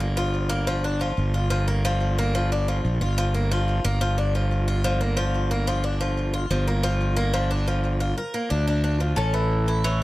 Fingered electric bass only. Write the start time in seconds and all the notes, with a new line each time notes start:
Already playing: G1
1.18 G1
2.85 A#1
3.01 G1
3.85 G1
6.50 G1
8.51 D2
9.17 A1